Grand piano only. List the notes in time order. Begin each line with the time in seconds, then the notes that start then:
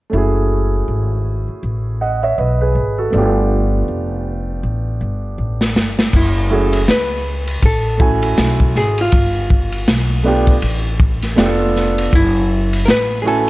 0.10 A3 C#4
0.14 E4 F#4 G#4
2.01 D#5 F#5
2.23 C#5 E5
2.38 B4 D#5
2.61 G#4 B4
2.98 F#4 A4
3.10 A3 B3 D4
3.16 F4 G4
6.48 A3 C#4 E4 F#4 G#4
7.97 A3 C#4 E4 F#4 G#5
10.23 A3 B3 D4 F4
10.27 G4
11.35 A3 B3 D4 F4 G4
11.46 A4
13.23 A3 C#4 E4 F#4
13.27 G#5